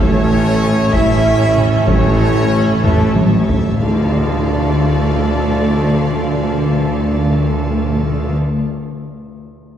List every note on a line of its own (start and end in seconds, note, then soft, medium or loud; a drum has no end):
0.00 0.81 A1 loud
0.00 0.82 A2 loud
0.00 3.44 E3 loud
0.00 0.91 A3 loud
0.00 3.44 A3 loud
0.00 3.76 A3 loud
0.00 0.91 C#4 loud
0.00 3.80 E4 loud
0.00 3.76 A4 loud
0.00 0.26 C#5 medium
0.00 0.28 C#5 medium
0.00 0.91 C#5 loud
0.00 0.94 C#5 loud
0.00 0.27 E5 loud
0.00 3.76 A5 loud
0.21 0.27 A2 medium
0.28 0.34 A2 medium
0.28 0.61 A4 medium
0.28 0.59 C#5 loud
0.28 0.61 E5 medium
0.35 0.41 A2 soft
0.42 0.48 A2 soft
0.50 0.56 A2 medium
0.60 0.90 C#5 medium
0.60 0.93 C#5 medium
0.60 0.92 E5 medium
0.65 0.72 A2 medium
0.73 0.79 A2 medium
0.80 0.87 A2 medium
0.88 1.75 A1 loud
0.88 1.76 A1 loud
0.88 0.94 A2 medium
0.88 1.87 E4 loud
0.88 1.23 A4 medium
0.88 1.21 C#5 medium
0.88 1.24 E5 medium
0.88 1.59 E5 loud
0.88 1.71 E5 loud
0.93 1.76 A2 loud
0.93 1.01 A2 medium
0.93 1.85 C#4 loud
0.93 taiko loud
1.02 1.08 A2 medium
1.09 1.16 A2 medium
1.17 1.24 A2 medium
1.22 1.31 A2 medium
1.22 1.53 C#5 medium
1.22 1.54 C#5 loud
1.22 1.53 E5 loud
1.32 1.39 A2 medium
1.40 1.46 A2 medium
1.54 1.62 A2 medium
1.54 1.86 A4 medium
1.54 1.86 C#5 medium
1.54 1.87 E5 medium
1.54 taiko mid medium
1.63 1.70 A2 medium
1.78 1.84 A2 medium
1.85 2.72 A1 loud
1.85 1.91 A2 medium
1.85 2.72 A2 loud
1.85 2.83 A3 loud
1.85 2.81 C#4 loud
1.85 2.19 C#5 medium
1.85 2.17 C#5 loud
1.85 2.85 C#5 loud
1.85 2.82 C#5 loud
1.85 2.19 E5 medium
1.85 taiko loud
1.93 1.98 A2 medium
2.00 2.07 A2 medium
2.08 2.14 A2 medium
2.15 2.21 A2 loud
2.15 2.51 A4 medium
2.15 2.48 C#5 loud
2.15 2.51 E5 medium
2.30 2.36 A2 medium
2.37 2.44 A2 loud
2.45 2.51 A2 medium
2.49 2.58 A2 loud
2.49 2.80 C#5 medium
2.49 2.80 E5 medium
2.59 2.66 A2 loud
2.67 2.73 A2 loud
2.74 2.82 A2 loud
2.82 3.68 A1 loud
2.82 3.69 A1 loud
2.82 2.89 A2 loud
2.82 3.69 A2 loud
2.82 3.15 E3 loud
2.82 3.16 A3 loud
2.82 3.15 A4 medium
2.82 3.16 A4 loud
2.82 3.15 A4 loud
2.82 3.14 C#5 medium
2.82 3.15 E5 medium
2.82 taiko low-mid loud
2.90 2.96 A2 loud
2.97 3.05 A2 loud
3.06 3.12 A2 loud
3.13 3.19 A2 loud
3.13 3.47 C#5 medium
3.13 3.48 E5 medium
3.13 taiko high medium
3.20 3.27 A2 loud
3.28 3.35 A2 loud
3.36 3.42 A2 loud
3.43 3.50 A2 loud
3.43 3.79 E5 medium
3.49 3.58 A2 loud
3.49 3.79 A4 medium
3.49 3.80 C#5 medium
3.49 taiko low medium
3.59 3.66 A2 loud
3.67 3.74 A2 loud
3.78 8.36 D2 loud
3.78 3.87 D3 loud
3.78 8.36 D3 medium
3.78 8.36 F3 medium
3.78 8.36 A3 medium
3.78 8.36 A3 loud
3.78 8.34 D4 loud
3.78 8.36 F4 medium
3.78 8.35 A4 loud
3.78 8.36 D5 loud
3.78 8.36 D5 medium
3.78 8.36 D5 loud
3.78 8.33 F5 medium
3.78 8.36 A5 medium
3.78 tam-tam medium
3.82 8.37 A3 medium
3.82 8.37 A4 medium
3.87 3.94 D3 medium
3.94 4.01 D3 loud
4.01 4.08 D3 loud
4.08 4.15 D3 loud
4.15 4.22 D3 loud
4.22 4.29 D3 loud
4.29 4.36 D3 loud
4.36 4.42 D3 loud
4.42 4.49 D3 loud
4.49 4.55 D3 loud
4.55 4.62 D3 loud
4.62 4.69 D3 loud
4.69 4.75 D3 loud
4.76 4.82 D3 loud
4.82 4.89 D3 loud
4.89 4.96 D3 loud
4.96 5.03 D3 loud
5.04 5.10 D3 loud
5.10 5.17 D3 medium
5.17 5.24 D3 loud
5.24 5.31 D3 loud
5.31 5.37 D3 loud
5.37 5.44 D3 loud
5.44 5.50 D3 loud
5.50 5.56 D3 medium
5.56 5.62 D3 loud
5.62 5.69 D3 loud
5.69 5.75 D3 loud
5.75 5.81 D3 medium
5.81 5.88 D3 loud
5.88 5.95 D3 loud
5.95 6.02 D3 loud
6.02 6.09 D3 loud
6.09 6.16 D3 loud
6.16 6.23 D3 loud
6.23 6.29 D3 loud
6.29 6.36 D3 loud
6.37 6.43 D3 loud
6.44 6.50 D3 loud
6.50 6.57 D3 loud
6.58 6.64 D3 loud
6.64 6.71 D3 loud
6.71 6.78 D3 loud
6.79 6.85 D3 loud
6.85 6.92 D3 loud
6.93 6.99 D3 loud
6.99 7.06 D3 medium
7.06 7.12 D3 loud
7.12 7.19 D3 loud
7.19 7.25 D3 loud
7.26 7.32 D3 loud
7.32 7.38 D3 loud
7.38 7.45 D3 medium
7.45 7.52 D3 loud
7.52 7.58 D3 loud
7.58 7.65 D3 loud
7.65 7.71 D3 loud
7.71 7.78 D3 loud
7.78 7.84 D3 loud
7.84 7.91 D3 loud
7.91 7.98 D3 loud
7.98 8.04 D3 loud
8.04 8.11 D3 loud
8.11 8.17 D3 loud
8.17 8.24 D3 loud
8.24 8.30 D3 loud
8.31 8.38 D3 loud